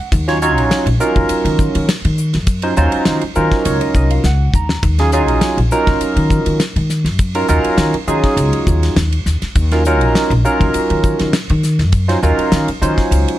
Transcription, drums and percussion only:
0.12 kick loud
0.12 hi-hat pedal medium
0.12 ride medium
0.28 snare soft
0.28 ride medium
0.42 hi-hat pedal medium
0.58 ride medium
0.71 snare loud
0.71 hi-hat pedal medium
0.71 ride medium
0.87 ride medium
1.00 hi-hat pedal medium
1.16 kick medium
1.16 ride medium
1.29 hi-hat pedal medium
1.29 ride medium
1.45 ride medium
1.59 kick medium
1.59 hi-hat pedal medium
1.75 ride medium
1.89 snare loud
1.89 hi-hat pedal medium
1.89 ride medium
2.05 ride medium
2.18 hi-hat pedal medium
2.34 snare soft
2.34 ride medium
2.47 kick loud
2.47 hi-hat pedal medium
2.47 ride medium
2.62 ride medium
2.76 hi-hat pedal medium
2.92 ride medium
3.05 snare loud
3.05 hi-hat pedal medium
3.05 ride medium
3.21 ride medium
3.35 hi-hat pedal medium
3.52 kick medium
3.52 snare soft
3.52 ride medium
3.65 hi-hat pedal medium
3.65 ride medium
3.81 ride medium
3.94 kick medium
3.94 hi-hat pedal medium
4.10 ride medium
4.24 snare medium
4.24 hi-hat pedal medium
4.54 kick medium
4.54 hi-hat pedal medium
4.69 snare medium
4.83 kick loud
4.83 hi-hat pedal medium
4.83 ride medium
4.99 snare soft
4.99 ride medium
5.12 hi-hat pedal medium
5.28 ride medium
5.41 snare loud
5.41 hi-hat pedal medium
5.41 ride medium
5.58 ride medium
5.71 hi-hat pedal medium
5.87 kick medium
5.87 snare soft
5.87 ride medium
6.01 hi-hat pedal medium
6.01 ride medium
6.17 ride medium
6.30 kick medium
6.30 hi-hat pedal medium
6.46 ride medium
6.60 snare medium
6.60 hi-hat pedal medium
6.60 ride medium
6.76 ride medium
6.90 snare soft
6.90 hi-hat pedal medium
7.06 snare soft
7.06 ride medium
7.19 kick loud
7.19 hi-hat pedal medium
7.19 ride medium
7.35 ride medium
7.48 hi-hat pedal medium
7.64 ride medium
7.78 snare loud
7.78 hi-hat pedal medium
7.78 ride medium
7.94 ride medium
8.08 hi-hat pedal medium
8.24 kick medium
8.24 snare soft
8.24 ride medium
8.37 hi-hat pedal medium
8.37 ride medium
8.53 ride medium
8.67 kick medium
8.67 hi-hat pedal medium
8.83 snare soft
8.83 ride medium
8.97 snare loud
8.97 hi-hat pedal medium
8.97 ride medium
9.12 ride medium
9.26 snare soft
9.26 hi-hat pedal medium
9.42 snare soft
9.42 ride medium
9.55 kick loud
9.55 hi-hat pedal medium
9.55 ride medium
9.71 snare soft
9.71 ride soft
9.85 hi-hat pedal medium
10.01 ride medium
10.15 snare loud
10.15 hi-hat pedal medium
10.15 ride medium
10.31 ride medium
10.45 hi-hat pedal medium
10.61 kick medium
10.61 ride medium
10.74 hi-hat pedal medium
10.74 ride medium
10.90 ride medium
11.04 kick medium
11.04 hi-hat pedal medium
11.19 snare soft
11.19 ride medium
11.33 snare loud
11.33 hi-hat pedal medium
11.33 ride medium
11.49 ride medium
11.63 snare soft
11.63 hi-hat pedal medium
11.79 snare soft
11.79 ride medium
11.92 kick loud
11.92 hi-hat pedal medium
11.92 ride medium
12.09 snare soft
12.09 ride medium
12.22 hi-hat pedal medium
12.39 ride medium
12.52 snare loud
12.52 hi-hat pedal medium
12.52 ride medium
12.68 ride medium
12.82 hi-hat pedal medium
12.98 kick medium
12.98 snare soft
12.98 ride medium
13.12 hi-hat pedal medium
13.12 ride medium
13.28 ride medium

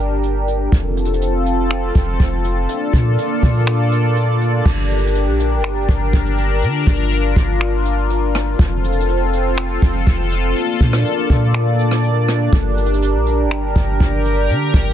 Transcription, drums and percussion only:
0.23 closed hi-hat medium
0.48 closed hi-hat medium
0.72 kick loud
0.72 closed hi-hat medium
0.97 closed hi-hat medium
1.05 closed hi-hat medium
1.13 closed hi-hat medium
1.22 closed hi-hat medium
1.46 closed hi-hat medium
1.71 finger snap loud
1.71 closed hi-hat medium
1.95 kick medium
1.95 closed hi-hat medium
2.20 kick loud
2.20 closed hi-hat medium
2.44 closed hi-hat medium
2.69 closed hi-hat medium
2.93 kick loud
2.93 closed hi-hat medium
3.18 closed hi-hat medium
3.43 kick medium
3.43 open hi-hat medium
3.67 finger snap loud
3.67 closed hi-hat medium
3.92 closed hi-hat medium
4.16 closed hi-hat medium
4.41 closed hi-hat medium
4.66 kick loud
4.66 crash loud
4.90 closed hi-hat medium
4.98 closed hi-hat medium
5.07 closed hi-hat medium
5.15 closed hi-hat medium
5.39 closed hi-hat medium
5.64 finger snap loud
5.64 closed hi-hat medium
5.89 kick medium
5.89 closed hi-hat medium
6.13 kick loud
6.13 closed hi-hat medium
6.38 closed hi-hat medium
6.62 closed hi-hat medium
6.87 kick loud
6.87 closed hi-hat medium
6.95 closed hi-hat medium
7.03 closed hi-hat medium
7.12 closed hi-hat medium
7.36 kick medium
7.36 closed hi-hat medium
7.61 finger snap loud
7.61 closed hi-hat medium
7.85 closed hi-hat medium
8.10 closed hi-hat medium
8.35 cross-stick loud
8.35 closed hi-hat medium
8.59 kick loud
8.59 closed hi-hat medium
8.84 closed hi-hat medium
8.92 closed hi-hat medium
9.00 closed hi-hat medium
9.09 closed hi-hat medium
9.33 closed hi-hat medium
9.57 finger snap loud
9.57 closed hi-hat medium
9.82 kick medium
9.82 closed hi-hat medium
10.07 kick loud
10.07 closed hi-hat medium
10.31 closed hi-hat medium
10.56 closed hi-hat medium
10.81 kick loud
10.81 closed hi-hat medium
10.93 cross-stick loud
11.05 closed hi-hat medium
11.30 kick medium
11.30 closed hi-hat medium
11.54 finger snap loud
11.54 closed hi-hat medium
11.79 closed hi-hat medium
11.91 cross-stick loud
12.03 closed hi-hat medium
12.28 cross-stick medium
12.28 closed hi-hat medium
12.53 kick loud
12.53 closed hi-hat medium
12.77 closed hi-hat medium
12.86 closed hi-hat medium
12.94 closed hi-hat medium
13.02 closed hi-hat medium
13.27 closed hi-hat medium
13.51 finger snap loud
13.51 closed hi-hat medium
13.76 kick medium
13.76 closed hi-hat medium
14.00 kick loud
14.00 closed hi-hat medium
14.25 closed hi-hat medium
14.50 closed hi-hat medium
14.74 kick loud
14.74 closed hi-hat medium
14.82 closed hi-hat medium

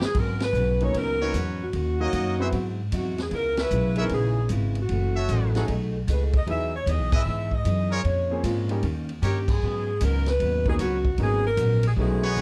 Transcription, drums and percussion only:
0.01 snare loud
0.15 kick medium
0.15 crash medium
0.40 snare medium
0.40 ride medium
0.54 hi-hat pedal soft
0.80 ride soft
0.94 kick soft
0.94 ride medium
1.34 kick soft
1.34 hi-hat pedal medium
1.34 ride medium
1.73 kick soft
1.73 ride medium
2.13 kick soft
2.13 hi-hat pedal medium
2.13 ride medium
2.52 kick soft
2.52 ride medium
2.92 kick soft
2.92 hi-hat pedal medium
2.92 ride medium
3.18 snare medium
3.18 ride soft
3.31 kick soft
3.31 ride medium
3.57 snare medium
3.57 ride medium
3.70 hi-hat pedal medium
3.96 ride medium
4.09 kick soft
4.09 ride medium
4.49 kick soft
4.49 hi-hat pedal medium
4.49 ride medium
4.75 ride medium
4.89 kick soft
4.89 ride medium
5.29 kick soft
5.29 hi-hat pedal soft
5.29 ride medium
5.55 snare medium
5.55 ride medium
5.68 kick soft
5.68 ride medium
6.08 kick soft
6.08 hi-hat pedal medium
6.08 ride medium
6.33 kick medium
6.33 ride medium
6.47 kick soft
6.47 ride medium
6.87 kick soft
6.87 hi-hat pedal medium
6.87 ride medium
7.12 kick loud
7.12 crash medium
7.51 kick soft
7.65 kick soft
7.65 hi-hat pedal medium
7.65 ride medium
8.04 kick soft
8.04 ride medium
8.43 kick soft
8.43 hi-hat pedal medium
8.43 ride medium
8.69 ride medium
8.83 kick soft
8.83 ride medium
9.09 ride soft
9.22 kick soft
9.22 hi-hat pedal medium
9.22 ride medium
9.48 kick medium
9.48 crash medium
10.01 kick soft
10.01 hi-hat pedal medium
10.01 ride medium
10.26 snare soft
10.26 ride medium
10.40 kick soft
10.40 ride medium
10.66 kick medium
10.79 kick soft
10.79 hi-hat pedal medium
10.79 ride medium
11.05 kick medium
11.18 kick soft
11.18 ride medium
11.57 kick soft
11.57 hi-hat pedal medium
11.57 ride medium
11.83 ride medium
11.97 kick soft
12.36 hi-hat pedal medium
12.36 high tom soft

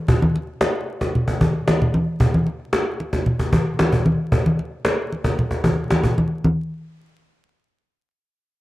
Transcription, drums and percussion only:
0.08 cajon bass loud
0.08 muted conga soft
0.08 low conga medium
0.22 cajon slap soft
0.22 high conga medium
0.35 cajon slap soft
0.35 muted conga soft
0.48 cajon slap soft
0.61 cajon slap loud
0.61 muted conga soft
0.87 cajon slap soft
1.01 cajon bass medium
1.01 cajon slap soft
1.14 cajon slap soft
1.14 low conga medium
1.28 cajon bass medium
1.28 cajon slap soft
1.41 cajon bass medium
1.41 high conga medium
1.68 cajon slap loud
1.68 high conga medium
1.82 low conga medium
1.94 cajon slap soft
1.94 high conga medium
2.20 cajon bass loud
2.20 muted conga soft
2.20 low conga medium
2.34 cajon slap soft
2.34 high conga medium
2.47 cajon slap soft
2.47 muted conga soft
2.60 cajon slap soft
2.73 cajon slap loud
2.99 cajon slap soft
2.99 muted conga soft
3.13 cajon bass medium
3.13 cajon slap soft
3.26 cajon slap soft
3.26 muted conga soft
3.26 low conga medium
3.39 cajon bass medium
3.53 cajon bass loud
3.53 high conga medium
3.79 cajon slap loud
3.79 muted conga soft
3.79 high conga medium
3.92 cajon bass loud
3.92 cajon slap soft
3.92 low conga medium
4.06 high conga medium
4.32 cajon bass loud
4.32 low conga medium
4.46 cajon slap soft
4.46 high conga medium
4.59 cajon slap soft
4.59 muted conga soft
4.72 cajon slap soft
4.85 cajon slap loud
4.85 muted conga soft
5.11 cajon slap soft
5.11 muted conga soft
5.24 cajon bass loud
5.24 cajon slap soft
5.38 cajon slap soft
5.38 muted conga soft
5.38 low conga medium
5.51 cajon bass medium
5.51 cajon slap soft
5.64 cajon bass loud
5.64 high conga medium
5.77 cajon slap soft
5.90 cajon slap medium
5.90 muted conga soft
5.90 high conga medium
6.03 cajon bass medium
6.03 low conga medium
6.17 cajon slap soft
6.17 high conga medium
6.44 high conga medium

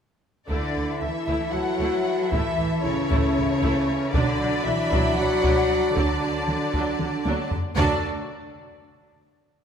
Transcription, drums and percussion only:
0.50 taiko medium
1.28 taiko soft
2.32 taiko medium
3.11 taiko medium
3.63 taiko medium
4.14 taiko medium
4.92 taiko medium
5.44 taiko medium
5.96 taiko medium
6.48 taiko mid soft
6.74 taiko medium
7.00 taiko mid medium
7.26 taiko high medium
7.52 taiko low medium
7.78 taiko low medium

